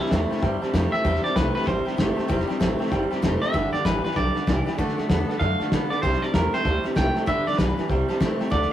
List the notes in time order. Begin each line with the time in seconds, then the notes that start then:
0.00 C4 E4 G4
0.06 C5, snare
0.10 E2 C3 G3 A3 C4 E4 G4 E5 G5, kick, snare, hi-hat pedal
0.30 C3 A3 C4 E4 G4 C5 E5 G5, muted upright bass stroke, snare
0.37 C5, snare
0.42 G2 C3 G3 C4 E4 G4 E5 G5, kick, snare
0.61 C3 G3 C4 E4 G4 C5 E5 A5, muted upright bass stroke, snare
0.73 F2 C3 G3 A3 C4 E4 G4 C5 E5 A5, kick, snare, hi-hat pedal
0.91 C3 A3 C4 E4 G4 C5 E5 G5, muted upright bass stroke, snare
1.03 E2 C3 G3 C4 E4 G4 C5 E5 G5, kick, snare
1.15 snare
1.23 C3 G3 C4 E4 G4 C5 D5 E5 A5, muted upright bass stroke, snare
1.34 C2 C3 G3 A3 C4 E4 G4 B4 C5 E5 G5, kick, snare, hi-hat pedal
1.54 C3 A3 C4 E4 G4 B4 C5 E5 G5, muted upright bass stroke, snare
1.62 C5, snare
1.66 A1 C3 G3 C4 E4 G4 C5 E5 G5, kick, snare
1.85 C3 G3 C4 E4 G4 C5 E5 G5, muted upright bass stroke, snare
1.97 G1 C3 G3 A3 C4 E4 G4 C5 E5 G5, kick, snare, hi-hat pedal
2.15 C3 A3 C4 E4 G4 C5 E5 A5, muted upright bass stroke, snare
2.27 E1 C3 G3 C4 E4 G4 C5 E5 G5, kick, snare
2.40 snare
2.47 C3 G3 C4 E4 G4 C5 E5 G5, muted upright bass stroke, snare
2.59 A1 C3 G3 A3 C4 E4 G4 C5 E5 A5, kick, snare, hi-hat pedal
2.79 C3 A3 C4 E4 G4 C5 E5 G5, muted upright bass stroke, snare
2.86 snare
2.90 G1 C3 G3 C4 E4 G4 C5 E5 G5, kick, snare
3.10 C3 G3 C4 E4 G4 C5 E5 G5, muted upright bass stroke, snare
3.22 F1 C3 G3 A3 C4 E4 G4 C5 E5 A5, kick, snare, hi-hat pedal
3.41 C3 A3 C4 E4 G4 C5 E5 G5, muted upright bass stroke, snare
3.53 G1 G2 D3 G3 B3 D4 G4 B4 D5 G5, kick, snare
3.72 G2 D3 G3 B3 D4 G4 B4 D5 G5, muted upright bass stroke, snare
3.84 A1 G2 D3 E3 G3 B3 D4 G4 B4 D5 F5, kick, snare, hi-hat pedal
4.03 G2 E3 G3 B3 D4 G4 B4 D5 F5, muted upright bass stroke, snare
4.11 snare
4.15 B1 G2 D3 G3 B3 D4 G4 B4 D5 G5, kick, snare
4.35 G2 D3 G3 B3 D4 G4 B4 D5 E5, muted upright bass stroke, snare
4.47 C2 G2 D3 E3 G3 B3 D4 G4 B4 D5 G5, kick, snare, hi-hat pedal
4.66 G2 E3 G3 B3 D4 G4 B4 D5 G5, muted upright bass stroke, snare
4.78 D2 D3 A3 D4 F#4 A4 D5 F#5, kick, snare
4.88 snare
4.97 D3 A3 D4 F#4 A4 D5 F#5, muted upright bass stroke, snare
5.08 E2 D3 A3 B3 D4 F#4 A4 D5 F#5, kick, snare, hi-hat pedal
5.28 D3 B3 D4 F#4 A4 D5 F#5, muted upright bass stroke, snare
5.39 F#2 D3 A3 D4 F#4 A4 D5 E5 F5, kick, snare
5.59 D3 A3 D4 F#4 A4 D5 F#5, muted upright bass stroke, snare
5.71 A2 D3 A3 B3 D4 F#4 A4 D5, kick, snare, hi-hat pedal
5.90 D3 B3 D4 F#4 A4 D5 F#5, muted upright bass stroke, snare
6.02 C2 C3 G3 C4 E4 G4 C5 E5 G5, kick, snare
6.13 snare
6.21 C3 G3 C4 E4 G4 C5 D5 E5 A5, muted upright bass stroke, snare
6.33 E2 C3 G3 A3 C4 E4 G4 A#4 C5 E5 A5, kick, snare, hi-hat pedal
6.52 C3 A3 C4 E4 G4 C5 E5 G5, muted upright bass stroke, snare
6.64 D2 C3 G3 C4 E4 G4 C5 E5 A5, kick, snare
6.83 C3 G3 C4 E4 G4 C5 E5 G5, muted upright bass stroke, snare
6.95 C2 C3 G3 A3 C4 E4 G4 C5 E5 G5 A5, kick, snare, hi-hat pedal
7.14 C3 A3 C4 E4 G4 C5 E5 A5, muted upright bass stroke, snare
7.26 G1 G2 D3 G3 B3 D4 G4 B4 D5 E5 G5, kick, snare
7.46 G2 D3 G3 B3 D4 G4 B4 D5 E5, muted upright bass stroke, snare
7.53 snare
7.58 B1 G2 D3 E3 G3 B3 D4 G4 B4 D5 A5, kick, snare, hi-hat pedal
7.77 G2 E3 G3 B3 D4 G4 B4 D5 A5, muted upright bass stroke, snare
7.89 C2 C3 G3 C4 E4 G4 C5 E5 G5, kick, snare
8.08 C3 G3 C4 E4 G4 C5 E5 A5, muted upright bass stroke, snare
8.20 D#2 C3 G3 A3 C4 E4 G4 C5 E5 A5, kick, snare, hi-hat pedal
8.39 C3 A3 C4 E4 G4 C5 E5 G5, muted upright bass stroke, snare
8.50 D2 D3 A3 D4 F#4 A4 D5 F#5 A5, kick, snare
8.62 snare